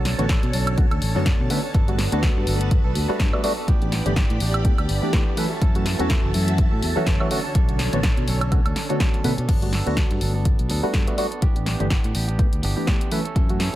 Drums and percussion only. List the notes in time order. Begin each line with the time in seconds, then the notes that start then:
0.05 snare, open hi-hat
0.19 closed hi-hat
0.29 kick, snare, closed hi-hat
0.43 closed hi-hat
0.53 open hi-hat
0.67 closed hi-hat, high woodblock
0.78 kick, closed hi-hat
0.91 closed hi-hat, high woodblock
1.02 open hi-hat
1.26 kick, snare, closed hi-hat
1.50 open hi-hat
1.74 kick, closed hi-hat
1.88 closed hi-hat
1.99 snare, open hi-hat
2.12 closed hi-hat
2.23 kick, snare, closed hi-hat
2.47 open hi-hat
2.61 closed hi-hat
2.71 kick, closed hi-hat
2.95 open hi-hat
3.20 kick, snare, closed hi-hat
3.33 high woodblock
3.44 open hi-hat
3.68 kick, closed hi-hat
3.82 closed hi-hat
3.92 snare, open hi-hat
4.06 closed hi-hat
4.16 kick, snare, closed hi-hat
4.30 closed hi-hat
4.40 open hi-hat
4.54 closed hi-hat, high woodblock
4.65 kick, closed hi-hat
4.78 closed hi-hat, high woodblock
4.89 open hi-hat
5.13 kick, snare, closed hi-hat
5.37 open hi-hat
5.62 kick, closed hi-hat
5.75 closed hi-hat
5.86 snare, open hi-hat
6.00 closed hi-hat
6.10 kick, snare, closed hi-hat
6.34 open hi-hat
6.48 closed hi-hat
6.58 kick, closed hi-hat
6.83 open hi-hat
7.07 kick, snare, closed hi-hat
7.20 high woodblock
7.31 open hi-hat
7.55 kick, closed hi-hat
7.69 closed hi-hat
7.79 snare, open hi-hat
7.93 closed hi-hat
8.03 kick, snare, closed hi-hat
8.17 closed hi-hat
8.28 open hi-hat
8.41 closed hi-hat, high woodblock
8.52 kick, closed hi-hat, high woodblock
8.66 closed hi-hat, high woodblock
8.76 snare, open hi-hat
8.90 closed hi-hat
9.00 kick, snare, closed hi-hat
9.14 closed hi-hat
9.24 open hi-hat
9.38 closed hi-hat
9.49 kick, closed hi-hat, crash
9.62 closed hi-hat
9.73 snare, open hi-hat
9.87 closed hi-hat
9.97 kick, snare, closed hi-hat
10.11 closed hi-hat
10.21 open hi-hat
10.45 kick, closed hi-hat
10.59 closed hi-hat
10.70 open hi-hat
10.94 kick, snare, closed hi-hat
11.07 closed hi-hat
11.18 open hi-hat
11.32 closed hi-hat
11.42 kick, closed hi-hat
11.56 closed hi-hat
11.66 snare, open hi-hat
11.80 closed hi-hat
11.90 kick, snare, closed hi-hat
12.04 closed hi-hat
12.15 open hi-hat
12.29 closed hi-hat
12.39 kick, closed hi-hat
12.53 closed hi-hat
12.63 open hi-hat
12.87 kick, snare, closed hi-hat
13.01 closed hi-hat
13.12 open hi-hat
13.25 closed hi-hat
13.36 kick, closed hi-hat
13.49 closed hi-hat
13.60 snare, open hi-hat